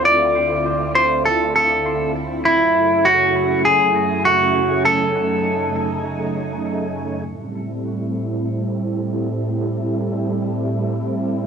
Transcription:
0, 0, Header, 1, 3, 480
1, 0, Start_track
1, 0, Tempo, 600000
1, 42, Time_signature, 4, 2, 24, 8
1, 9175, End_track
2, 0, Start_track
2, 0, Title_t, "Clean electric guitar"
2, 0, Program_c, 0, 27
2, 41, Note_on_c, 0, 74, 108
2, 730, Note_off_c, 0, 74, 0
2, 762, Note_on_c, 0, 72, 91
2, 986, Note_off_c, 0, 72, 0
2, 1003, Note_on_c, 0, 69, 90
2, 1226, Note_off_c, 0, 69, 0
2, 1244, Note_on_c, 0, 69, 81
2, 1691, Note_off_c, 0, 69, 0
2, 1962, Note_on_c, 0, 64, 88
2, 2440, Note_on_c, 0, 66, 90
2, 2456, Note_off_c, 0, 64, 0
2, 2889, Note_off_c, 0, 66, 0
2, 2920, Note_on_c, 0, 68, 98
2, 3399, Note_off_c, 0, 68, 0
2, 3402, Note_on_c, 0, 66, 93
2, 3880, Note_off_c, 0, 66, 0
2, 3883, Note_on_c, 0, 69, 105
2, 5291, Note_off_c, 0, 69, 0
2, 9175, End_track
3, 0, Start_track
3, 0, Title_t, "String machine"
3, 0, Program_c, 1, 50
3, 0, Note_on_c, 1, 38, 81
3, 0, Note_on_c, 1, 50, 74
3, 0, Note_on_c, 1, 60, 73
3, 0, Note_on_c, 1, 64, 76
3, 0, Note_on_c, 1, 65, 91
3, 1930, Note_off_c, 1, 60, 0
3, 1931, Note_off_c, 1, 38, 0
3, 1931, Note_off_c, 1, 50, 0
3, 1931, Note_off_c, 1, 65, 0
3, 1962, Note_on_c, 1, 42, 84
3, 1962, Note_on_c, 1, 49, 74
3, 1962, Note_on_c, 1, 57, 74
3, 1962, Note_on_c, 1, 80, 90
3, 3851, Note_off_c, 1, 64, 0
3, 3883, Note_on_c, 1, 63, 74
3, 5770, Note_off_c, 1, 42, 0
3, 5770, Note_off_c, 1, 49, 0
3, 5770, Note_off_c, 1, 57, 0
3, 5770, Note_off_c, 1, 80, 0
3, 5783, Note_off_c, 1, 63, 0
3, 5802, Note_on_c, 1, 45, 77
3, 5802, Note_on_c, 1, 55, 69
3, 5802, Note_on_c, 1, 69, 86
3, 5803, Note_on_c, 1, 60, 71
3, 5803, Note_on_c, 1, 64, 70
3, 9175, Note_off_c, 1, 45, 0
3, 9175, Note_off_c, 1, 55, 0
3, 9175, Note_off_c, 1, 60, 0
3, 9175, Note_off_c, 1, 64, 0
3, 9175, Note_off_c, 1, 69, 0
3, 9175, End_track
0, 0, End_of_file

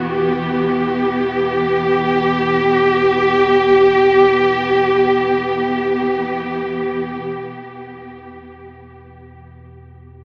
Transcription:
0, 0, Header, 1, 3, 480
1, 0, Start_track
1, 0, Key_signature, 1, "minor"
1, 0, Tempo, 500000
1, 9830, End_track
2, 0, Start_track
2, 0, Title_t, "Cello section"
2, 0, Program_c, 0, 48
2, 0, Note_on_c, 0, 52, 62
2, 0, Note_on_c, 0, 59, 68
2, 0, Note_on_c, 0, 66, 84
2, 50, Note_on_c, 0, 67, 86
2, 117, Note_off_c, 0, 66, 0
2, 6923, Note_off_c, 0, 59, 0
2, 6925, Note_off_c, 0, 52, 0
2, 6971, Note_off_c, 0, 67, 0
2, 9830, End_track
3, 0, Start_track
3, 0, Title_t, "Synth drone"
3, 0, Program_c, 1, 95
3, 0, Note_on_c, 1, 40, 72
3, 0, Note_on_c, 1, 47, 59
3, 6903, Note_off_c, 1, 40, 0
3, 6911, Note_off_c, 1, 47, 0
3, 6914, Note_on_c, 1, 40, 73
3, 6922, Note_on_c, 1, 47, 65
3, 9830, Note_off_c, 1, 40, 0
3, 9830, Note_off_c, 1, 47, 0
3, 9830, End_track
0, 0, End_of_file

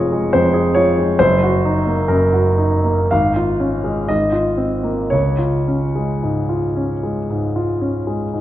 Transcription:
0, 0, Header, 1, 2, 480
1, 0, Start_track
1, 0, Key_signature, -5, "major"
1, 0, Tempo, 879765
1, 652, Time_signature, 4, 2, 24, 8
1, 1142, Tempo, 1008403
1, 2582, Tempo, 1071429
1, 4056, End_track
2, 0, Start_track
2, 0, Title_t, "Grand piano"
2, 0, Program_c, 0, 0
2, 0, Control_c, 0, 64, 127
2, 0, Note_on_c, 0, 29, 42
2, 0, Note_on_c, 0, 41, 36
2, 0, Note_on_c, 0, 56, 32
2, 0, Note_on_c, 0, 65, 36
2, 0, Note_on_c, 0, 68, 40
2, 0, Note_on_c, 0, 73, 66
2, 0, Note_on_c, 0, 75, 61
2, 66, Note_off_c, 0, 56, 0
2, 66, Note_on_c, 0, 56, 33
2, 134, Note_off_c, 0, 65, 0
2, 174, Note_off_c, 0, 73, 0
2, 180, Note_on_c, 0, 72, 57
2, 187, Note_off_c, 0, 41, 0
2, 187, Note_on_c, 0, 41, 38
2, 251, Note_off_c, 0, 56, 0
2, 294, Note_off_c, 0, 68, 0
2, 294, Note_on_c, 0, 68, 33
2, 371, Note_off_c, 0, 41, 0
2, 407, Note_on_c, 0, 73, 63
2, 414, Note_off_c, 0, 72, 0
2, 415, Note_on_c, 0, 65, 37
2, 484, Note_off_c, 0, 68, 0
2, 536, Note_on_c, 0, 56, 30
2, 605, Note_off_c, 0, 65, 0
2, 630, Note_off_c, 0, 29, 0
2, 649, Note_off_c, 0, 73, 0
2, 649, Note_on_c, 0, 72, 72
2, 654, Note_off_c, 0, 56, 0
2, 654, Note_on_c, 0, 30, 50
2, 661, Control_c, 0, 64, 0
2, 663, Note_off_c, 0, 75, 0
2, 740, Control_c, 0, 64, 127
2, 780, Note_on_c, 0, 66, 42
2, 902, Note_on_c, 0, 63, 35
2, 972, Note_off_c, 0, 66, 0
2, 1017, Note_on_c, 0, 58, 33
2, 1096, Note_off_c, 0, 63, 0
2, 1136, Note_on_c, 0, 70, 46
2, 1139, Note_on_c, 0, 42, 40
2, 1140, Note_off_c, 0, 72, 0
2, 1208, Note_off_c, 0, 58, 0
2, 1253, Note_on_c, 0, 66, 35
2, 1324, Note_off_c, 0, 42, 0
2, 1374, Note_on_c, 0, 63, 33
2, 1449, Note_off_c, 0, 66, 0
2, 1498, Note_on_c, 0, 58, 30
2, 1573, Note_off_c, 0, 63, 0
2, 1605, Note_off_c, 0, 30, 0
2, 1621, Note_off_c, 0, 70, 0
2, 1623, Note_off_c, 0, 58, 0
2, 1625, Note_on_c, 0, 77, 56
2, 1631, Note_on_c, 0, 32, 44
2, 1634, Control_c, 0, 64, 0
2, 1722, Control_c, 0, 64, 127
2, 1746, Note_on_c, 0, 65, 37
2, 1858, Note_on_c, 0, 61, 35
2, 1931, Note_off_c, 0, 65, 0
2, 1974, Note_on_c, 0, 56, 32
2, 2043, Note_off_c, 0, 61, 0
2, 2081, Note_off_c, 0, 32, 0
2, 2090, Note_off_c, 0, 56, 0
2, 2090, Note_on_c, 0, 75, 54
2, 2092, Note_off_c, 0, 77, 0
2, 2094, Note_on_c, 0, 32, 40
2, 2100, Control_c, 0, 64, 0
2, 2180, Control_c, 0, 64, 127
2, 2204, Note_on_c, 0, 65, 30
2, 2322, Note_on_c, 0, 60, 32
2, 2399, Note_off_c, 0, 65, 0
2, 2446, Note_on_c, 0, 58, 28
2, 2526, Note_off_c, 0, 60, 0
2, 2568, Note_off_c, 0, 32, 0
2, 2574, Note_on_c, 0, 73, 50
2, 2579, Note_off_c, 0, 58, 0
2, 2581, Note_off_c, 0, 75, 0
2, 2581, Note_on_c, 0, 37, 38
2, 2589, Control_c, 0, 64, 0
2, 2679, Control_c, 0, 64, 127
2, 2701, Note_on_c, 0, 65, 31
2, 2833, Note_on_c, 0, 61, 29
2, 2900, Note_off_c, 0, 65, 0
2, 2957, Note_on_c, 0, 56, 27
2, 3025, Note_off_c, 0, 61, 0
2, 3080, Note_on_c, 0, 44, 27
2, 3145, Note_off_c, 0, 56, 0
2, 3197, Note_on_c, 0, 65, 26
2, 3267, Note_off_c, 0, 44, 0
2, 3319, Note_on_c, 0, 61, 24
2, 3386, Note_off_c, 0, 65, 0
2, 3440, Note_on_c, 0, 56, 25
2, 3507, Note_off_c, 0, 61, 0
2, 3533, Note_off_c, 0, 37, 0
2, 3561, Note_on_c, 0, 44, 27
2, 3628, Note_off_c, 0, 56, 0
2, 3675, Note_on_c, 0, 65, 30
2, 3747, Note_off_c, 0, 44, 0
2, 3789, Note_on_c, 0, 61, 27
2, 3861, Note_off_c, 0, 65, 0
2, 3904, Note_on_c, 0, 56, 25
2, 3975, Note_off_c, 0, 61, 0
2, 4018, Note_off_c, 0, 73, 0
2, 4023, Note_on_c, 0, 44, 26
2, 4056, Note_off_c, 0, 44, 0
2, 4056, Note_off_c, 0, 56, 0
2, 4056, End_track
0, 0, End_of_file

